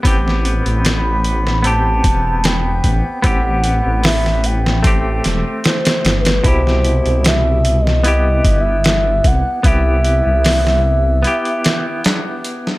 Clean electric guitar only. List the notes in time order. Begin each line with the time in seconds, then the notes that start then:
0.03 B3 C4
0.07 G4
1.63 B3 C4
1.67 G4
3.22 B3 C4
3.27 G4
4.83 A3 C4
4.87 G4
6.44 B2 E4
6.48 G4
8.03 B3 E4
8.08 G4
9.63 B3 E4
9.67 G4
11.23 B3 E4
11.27 G4